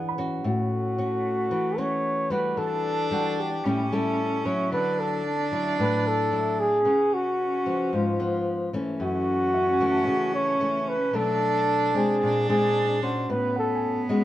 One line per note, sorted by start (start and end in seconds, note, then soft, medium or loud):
0.00 0.42 E3 medium
0.00 0.13 B3 medium
0.00 0.13 D4 medium
0.00 0.13 G#4 medium
0.00 0.67 F#5 medium
0.09 0.82 B5 soft
0.18 0.96 C#4 medium
0.18 0.96 F#4 medium
0.43 1.48 A2 medium
0.43 2.59 A3 medium
0.43 1.80 F#4 medium
0.98 1.51 C#4 medium
0.98 1.51 F#4 medium
1.51 2.55 E3 medium
1.78 2.27 C#4 medium
1.78 2.27 F#4 medium
1.78 2.32 C#5 loud
2.30 3.07 G3 medium
2.30 3.07 D4 medium
2.30 3.07 F#4 medium
2.30 2.60 B4 medium
2.57 3.62 E3 medium
2.57 3.65 D4 loud
2.57 3.42 A4 medium
3.11 3.47 G3 medium
3.11 3.47 D4 medium
3.11 3.48 F#4 medium
3.40 3.95 G4 medium
3.63 4.70 A2 medium
3.63 3.81 G3 medium
3.63 4.72 C#4 loud
3.63 3.81 C#4 medium
3.63 3.81 E4 medium
3.92 4.41 G3 medium
3.92 4.42 C#4 medium
3.92 4.42 E4 medium
3.92 4.48 A4 medium
4.45 5.21 F#3 medium
4.45 5.22 E4 medium
4.45 4.72 C#5 medium
4.71 5.77 D3 medium
4.71 6.85 D4 loud
4.71 5.01 B4 medium
5.00 5.53 A4 medium
5.52 6.28 F#3 medium
5.52 6.28 E4 medium
5.79 6.84 A2 medium
5.79 6.09 B4 medium
6.07 6.61 A4 loud
6.32 6.67 F#3 medium
6.32 6.67 E4 medium
6.60 7.16 G#4 medium
6.85 7.90 C#3 medium
6.85 7.62 B3 soft
6.85 8.69 C#4 medium
7.14 7.96 F#4 medium
7.66 8.15 F3 medium
7.66 8.16 B3 medium
7.93 8.97 G#2 medium
7.93 8.74 F4 medium
8.19 8.69 F3 medium
8.19 8.69 B3 medium
8.73 9.76 E3 medium
8.73 9.77 A3 medium
8.73 9.77 C#4 medium
8.99 10.04 F#2 medium
8.99 11.16 C#4 loud
8.99 10.31 F#4 loud
9.54 11.37 E5 soft
9.73 11.53 G#5 soft
9.80 10.57 E3 medium
9.80 10.57 A3 medium
9.80 10.57 C#4 medium
9.91 11.69 A5 soft
10.07 11.12 C#3 medium
10.34 10.90 C#5 loud
10.60 10.95 E3 soft
10.60 10.95 A3 medium
10.60 10.96 C#4 medium
10.89 11.17 B4 medium
11.13 12.19 B2 medium
11.13 11.90 F#3 soft
11.13 11.90 A3 medium
11.13 11.90 D4 medium
11.13 12.21 D4 loud
11.13 11.97 A4 loud
11.94 12.44 G#3 medium
11.94 12.44 C4 medium
11.94 12.44 D4 medium
11.94 12.49 G#4 medium
12.22 13.27 A#2 medium
12.22 13.31 D4 loud
12.48 12.98 G#3 medium
12.48 12.98 C4 medium
12.48 12.98 D4 medium
12.48 12.99 G#4 medium
13.02 14.05 C#4 medium
13.02 14.05 F#4 medium
13.02 13.32 C5 medium
13.29 14.24 A2 medium
13.29 14.24 B3 loud
13.29 13.56 B4 loud
13.56 14.07 A4 medium
13.56 14.24 F#5 soft
13.75 14.24 G#5 soft
14.09 14.24 G#3 medium
14.09 14.24 C#4 medium
14.09 14.24 F#4 medium